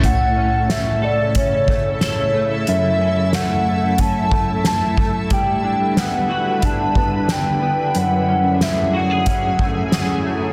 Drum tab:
HH |x-x-x-x-|x-x-x-x-|x-x-x-x-|x-x-x-x-|
SD |--o---o-|--o---o-|--o---o-|--o---o-|
BD |o---oo--|----oo-o|o---oo--|----oo--|